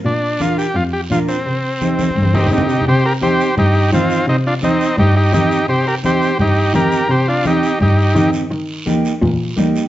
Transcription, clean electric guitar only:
\new Staff \with { instrumentName = "Clean electric guitar" } { \time 4/4 \key c \minor \tempo 4 = 170 r4 <d' f' bes'>8 r4. <d' f' bes'>8 r8 | r4 <c' ees' g'>8 r4. <c' ees' g'>8 r8 | r4 <c' ees' g'>8 r4. <c' ees' f'>8 r8 | r4 <c' ees' g'>8 r4. <c' ees' g'>8 r8 |
r4 <c' ees' g'>8 r4. <c' ees' g'>8 r8 | r4 <c' ees' g'>8 r4. <c' ees' g'>8 r8 | r4 <bes ees' g'>8 r4. <bes ees' g'>8 r8 | }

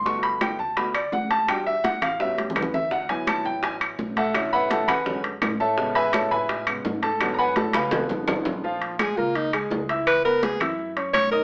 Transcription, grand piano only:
<<
  \new Staff \with { instrumentName = "Grand piano" } { \time 4/4 \key a \major \tempo 4 = 168 cis'''8 b''8 g''8 a''8 b''8 d''8 fis''8 a''8 | g''8 e''8 fis''8 eis''8 e''8 g'8 b'8 e''8 | fis''8 gis''8 a''8 g''8 gis''8 r4 <a' e'' fis'' a''>8~ | <a' e'' fis'' a''>8 <b' e'' fis'' b''>8 <a' e'' fis'' a''>8 <b' fis'' gis'' b''>4 r4 <a' cis'' e'' a''>8~ |
<a' cis'' e'' a''>8 <b' e'' gis'' b''>8 <a' cis'' e'' a''>8 <b' e'' gis'' b''>4 r4 <a' a''>8~ | <a' a''>8 <b' fis'' gis'' ais'' b''>8 <a' a''>8 <b' eis'' gis'' b''>4 r4. | \key des \major <f f' f''>4 <aes aes' aes''>8 <bes bes' bes''>4 <aes aes' aes''>4 <e' e'' e'''>8~ | <e' e'' e'''>8 <ces' ces'' ces'''>4 <fes' fes'' fes'''>4 <des' des'' des'''>4 <ees' ees'' ees'''>8 | }
  \new Staff \with { instrumentName = "Grand piano" } { \time 4/4 \key a \major <a b fis'>4. r8 <a b fis'>8 r4. | <g d' fis'>8 r4. <g b cis' fis'>8 r4. | r8 <fis b e'>2.~ <fis b e'>8 | <d e a cis'>4. r8 <d fis gis cis'>8 r4. |
<cis gis b>2~ <cis gis b>8 <cis gis b>8 r4 | <d fis b>2 <eis gis b>2 | \key des \major r1 | r1 | }
>>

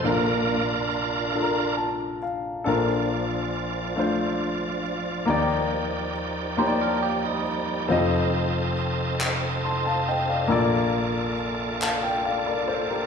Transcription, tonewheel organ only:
\new Staff \with { instrumentName = "Tonewheel organ" } { \time 6/8 \key bes \major \tempo 4. = 46 << { <f' bes'>2 r4 | <f d''>2.~ | <f d''>2. | <c' ees''>2. |
<bes d''>2. | } \\ { <bes, bes d'>8 r2 r8 | f'2. | <ees' g'>2. | <f' a'>2.~ |
<f' a'>2. | } >> }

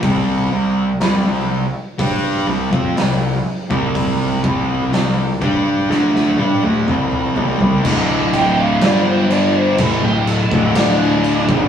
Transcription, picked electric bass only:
\new Staff \with { instrumentName = "Picked electric bass" } { \clef bass \time 4/4 \key c \mixolydian \tempo 4 = 62 c,8 c,8 c,16 c,8 r16 g,8 c,16 f,16 c,8 r16 c,16~ | c,8 c,8 c,8 g,8 d,8 g,16 d,16 c,8 c,16 c,16 | d,,4 g,,4 a,,16 d,,8 d,,4 gis,,16 | }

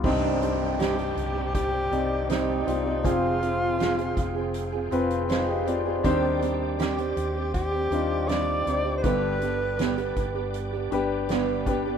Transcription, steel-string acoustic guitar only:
\new Staff \with { instrumentName = "Steel-string acoustic guitar" } { \time 4/4 \key c \minor \tempo 4 = 80 <c ees g c' d' g'>8 <g c' d' g'>8 <c ees g c' d' g'>16 <g c' d' g'>8 <g c' d' g'>8 <g c' d' g'>16 <g c' d' g'>8 <c ees g c' g'>8 <g c' d' g'>16 <g c' d' g'>16 | <f c' f' aes'>8 <f c' f' aes'>8 <f c' f' aes'>16 <c' f' aes'>8 <c' f' aes'>8 <c' f' aes'>16 <f c' f' aes'>8 <f c' f' aes'>8 <f c' f' aes'>16 <c' f' aes'>16 | <ees g c' d' g'>8 <g c' d' g'>8 <ees g c' d' g'>16 <c' d' g'>8 <c' d' g'>8 <c' d' g'>16 <g c' d' g'>8 <ees g c' d' g'>8 <g c' d' g'>16 <c' d' g'>16 | <g, d g b d' g'>8 <g b d' g'>8 <g, d g b d' g'>16 <g b d' g'>8 <g b d' g'>8 <g b d' g'>16 <g b d' g'>8 <g, d g b d' g'>8 <g b d' g'>16 <g b d' g'>16 | }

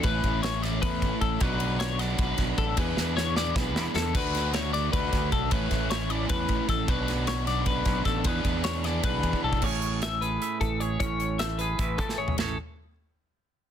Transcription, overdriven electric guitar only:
\new Staff \with { instrumentName = "Overdriven electric guitar" } { \time 7/8 \key a \major \tempo 4 = 153 <a, e a cis' e'>4. <a, e a cis' e'>2 | <b, fis b d' fis'>4. <b, fis b d' fis'>2 | <e b d' gis'>4. <e b d' gis'>2 | <d a d' fis'>4. <d a d' fis'>2 |
<a, e a cis' e'>4. <a, e a cis' e'>2 | <b, fis b d' fis'>4. <b, fis b d' fis'>2 | <e b d' gis'>4. <e b d' gis'>2 | r2. r8 |
r2. r8 | r2. r8 | }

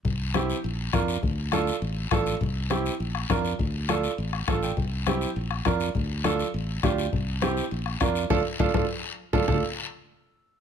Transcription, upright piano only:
\new Staff \with { instrumentName = "Upright piano" } { \time 4/4 \key d \minor \tempo 4 = 204 r4 <c' e' g'>8 r4. <d' f' bes'>8 r8 | r4 <d' f' a'>8 r4. <d' f' a'>8 r8 | r4 <c' e' g'>8 r4. <d' f' bes'>8 r8 | r4 <d' f' a'>8 r4. <d' f' a' d''>8 g''8 |
r4 <c' e' g'>8 r4. <d' f' bes'>8 r8 | r4 <d' f' a'>8 r4. <d' f' g'>8 r8 | r4 <c' e' g'>8 r4. <d' f' bes'>8 r8 | <d' f' a'>8 r8 <d' f' a'>8 <d' f' a'>8 r4. <d' f' a'>8 |
<d' f' a'>8 r2. r8 | }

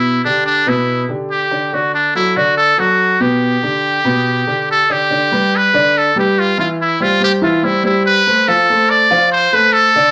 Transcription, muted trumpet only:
\new Staff \with { instrumentName = "Muted trumpet" } { \time 4/4 \key g \mixolydian \tempo 4 = 142 e'8 d'8 d'8 e'4 r8 g'4 | fis'8 d'8 e'8 fis'8 a'8 fis'4 g'8~ | g'2. a'8 g'8~ | g'4 b'4 a'8 g'8 f'8 f'8 |
e'8 f'8 g'8 f'8 e'8 e'8 b'4 | a'4 d''4 c''8 b'8 a'4 | }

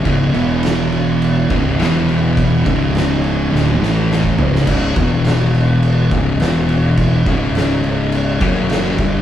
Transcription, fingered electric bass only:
\new Staff \with { instrumentName = "Fingered electric bass" } { \clef bass \time 4/4 \key cis \minor \tempo 4 = 104 cis,,8 e,,2 cis,,8 e,,4~ | e,,8 cis,,4. d,,8 a,,4 cis,,8 | cis,,8 e,,2 cis,,8 e,,4~ | e,,8 cis,,2 fis,,4 g,,8 | }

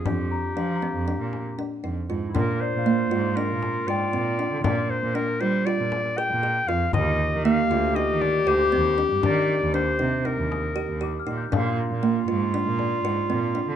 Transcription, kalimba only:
\new Staff \with { instrumentName = "Kalimba" } { \time 9/8 \key bes \mixolydian \tempo 4. = 79 d'4 d'8 c'8 d'4 d'8 ees'8 f'8 | d'4 bes8 f'8 d'4 f'8 c'8 d'8 | d'4 d'8 f'8 f'4 aes'8 aes'8 f'8 | d4 bes8 f'8 ees'4 g'8 c'8 d'8 |
d'4 d'8 ees'8 ees'4 g'8 g'8 ees'8 | d'4 bes8 f'8 d'4 f'8 c'8 d'8 | }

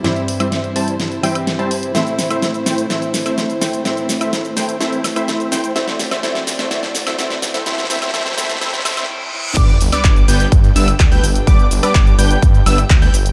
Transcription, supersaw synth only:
\new Staff \with { instrumentName = "Supersaw synth" } { \time 4/4 \key g \major \tempo 4 = 126 <g c' e' c'' e''>8 r16 <g c' e' c'' e''>8. <g c' e' c'' a''>8 r8 <g c' e' c'' g''>16 r8 <g c' e' c'' a''>16 r8 | <a c' e' c'' e''>8 r16 <a c' e' c'' e''>8. <a c' e' c'' g''>8 <a c' e' c'' e''>8 r16 <a c' e' c'' e''>8. <a c' e' c'' g''>8 | <a c' e' c'' e''>8 r16 <a c' e' c'' e''>8. <a c' e' c'' g''>8 <a c' e' c'' e''>8 r16 <a c' e' c'' e''>8. <a c' e' c'' g''>8 | <a c' e' c'' e''>8 r16 <a c' e' c'' e''>16 <a c' e' c'' e''>8 r16 <a c' e' c'' e''>16 <a c' e' c'' e''>8 r16 <a c' e' c'' e''>16 <a c' e' c'' e''>8 r16 <a c' e' c'' e''>16 |
<a c' e' c'' e''>8 <a c' e' c'' e''>8 <a c' e' c'' e''>8 <a c' e' c'' e''>8 <a c' e' c'' e''>8 <a c' e' c'' e''>8 r4 | <g b d' b' d''>8 r16 <g b d' b' d''>8. <g b d' b' g''>8 r8 <g b d' b' e''>16 r8 <g b d' b' g''>16 r8 | <g b d' b' d''>8 r16 <g b d' b' d''>8. <g b d' b' g''>8 r8 <g b d' b' e''>16 r8 <g b d' b' g''>16 r8 | }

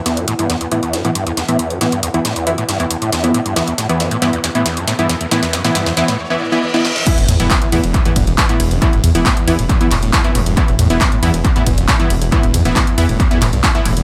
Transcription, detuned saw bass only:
\new Staff \with { instrumentName = "Detuned saw bass" } { \clef bass \time 4/4 \key e \minor \tempo 4 = 137 r1 | r1 | r1 | r1 |
r16 e,,16 e,16 e,,16 r8 e,16 e,,16 r16 e,16 e,,16 e,,16 r8 e,,16 e,,16 | r16 e,,16 e,16 e,,16 r8 e,16 e,,16 r16 e,16 e,,16 e,,16 r8 e,,16 e,,16 | r16 e,,16 e,16 e,,16 r8 e,16 e,,16 r16 e,16 e,,16 e,,16 r8 e,,16 e,,16 | r16 e,,16 e,16 e,,16 r8 e,16 e,,16 r16 e,16 e,,16 b,,16 r8 e,,16 e,,16 | }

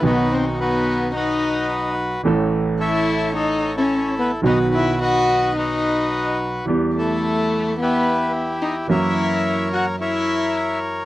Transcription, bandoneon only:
\new Staff \with { instrumentName = "Bandoneon" } { \time 4/4 \key b \phrygian \tempo 4 = 109 << { b'8 c''8 b'4 dis''4. r8 | r4 e''4 dis''8. cis''8. b'8 | dis''8 e''8 fis''4 dis''4. r8 | r8 a'4. b'4 r8 dis''8 |
e''4. fis''8 e''4. r8 | } \\ { <dis' fis'>4 <dis' fis'>4 <fis' b'>2 | r4 <a' cis''>4 a'8. <e' a'>4~ <e' a'>16 | <fis' b'>4 <b' dis''>4 <fis' b'>2 | r8 e'4. <e' g'>2 |
<ais' cis''>2 <ais' cis''>2 | } >> }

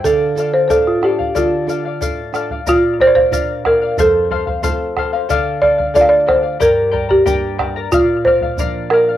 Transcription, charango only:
\new Staff \with { instrumentName = "Charango" } { \time 2/4 \key d \minor \tempo 4 = 92 <a' d'' f''>8 <a' d'' f''>16 <d'' f''>16 <a' d'' f''>8 <a' d'' f''>16 <d'' f''>16 | <a' d'' f''>8 <a' d'' f''>16 <d'' f''>16 <a' d'' f''>8 <a' d'' f''>16 <d'' f''>16 | <bes' d'' f''>8 <bes' d'' f''>16 <d'' f''>16 <bes' d'' f''>8 <bes' d'' f''>16 <d'' f''>16 | <a' c'' f''>8 <a' c'' f''>16 <c'' f''>16 <a' c'' f''>8 <a' c'' f''>16 <c'' f''>16 |
<a' d'' f''>8 <a' d'' f''>16 <d'' f''>16 <a' d'' f''>8 <a' d'' f''>16 <d'' f''>16 | <g' bes' d'' g'' bes''>8 <bes' d'' g'' bes''>16 <bes' d'' bes''>16 <g' bes' d'' g'' bes''>8 <bes' d'' g'' bes''>16 <bes' d'' bes''>16 | <bes' d'' f''>8 <bes' d'' f''>16 <d'' f''>16 <bes' d'' f''>8 <bes' d'' f''>16 <d'' f''>16 | }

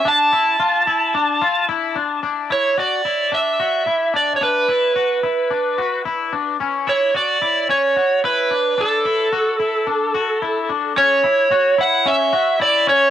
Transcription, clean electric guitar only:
\new Staff \with { instrumentName = "Clean electric guitar" } { \time 4/4 \key b \dorian \tempo 4 = 110 d'8 e'8 f'8 e'8 d'8 f'8 e'8 d'8 | d'8 e'8 fis'8 e'8 d'8 fis'8 e'8 d'8 | d'8 e'8 fis'8 e'8 d'8 fis'8 e'8 d'8 | cis'8 e'8 fis'8 e'8 cis'8 fis'8 e'8 d'8 |
d'8 e'8 fis'8 e'8 d'8 fis'8 e'8 d'8 | cis'8 e'8 fis'8 e'8 cis'8 fis'8 e'8 cis'8 | }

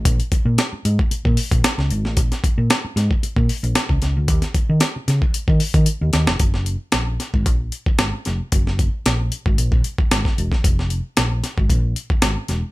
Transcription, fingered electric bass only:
\new Staff \with { instrumentName = "Fingered electric bass" } { \clef bass \time 4/4 \key ges \lydian \tempo 4 = 113 bes,,16 r8 bes,16 r8 aes,16 r8 bes,16 r16 bes,,16 r16 des,16 aes,,16 a,,16 | bes,,16 r8 bes,16 r8 aes,16 r8 bes,16 r16 bes,,16 r16 des,16 des,16 d,16 | ees,16 r8 ees16 r8 des16 r8 ees16 r16 ees16 r16 ees,16 ees,16 f,,16 | ges,,8. r16 bes,,8 r16 aes,,16 bes,,8 r8 aes,,16 r16 f,,16 r16 |
ges,,8. r16 bes,,8 r16 aes,,16 bes,,8 r8 aes,,16 r16 e,,16 r16 | f,,8. r16 bes,,8 r16 aes,,16 bes,,8 r8 aes,,16 r16 e,,16 r16 | }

